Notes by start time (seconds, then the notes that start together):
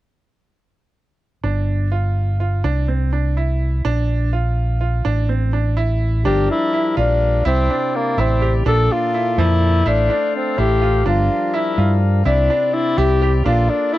1.44 G1 D4
1.92 F4
2.40 F4
2.64 C2 D4
2.88 C4
3.13 D4
3.37 E4
3.85 A#1 D4
4.33 F4
4.81 F4
5.05 A1 D4
5.29 C4
5.53 D4
5.77 E4
6.25 G1 F3 G3 D4 G4 A#4
6.51 E4
6.73 E4
6.97 A#1 D4 F4
7.45 C2 C3 C4 E4 D5
7.70 D4
7.96 A#3
8.18 A1 C4 E4
8.42 G4
8.65 A#1 A#2 A#3 D4 A4 D5
8.92 F4
9.14 E4
9.38 F2 F3 E4
9.85 A1 A3 D4 E4 A4 C5 F5
10.10 D4
10.36 C4
10.58 A1 E4 G4
10.82 F4
11.05 G1 F3 G3 D4 F4 A#4
11.54 E4
11.78 G2 F4
12.24 C2 C3 C4 D4 E4 D5
12.50 D4
12.74 E4
12.98 C2 E4 G4
13.22 G4
13.44 A#1 A#3 D4 F4 A4 D5
13.70 D4
13.93 E4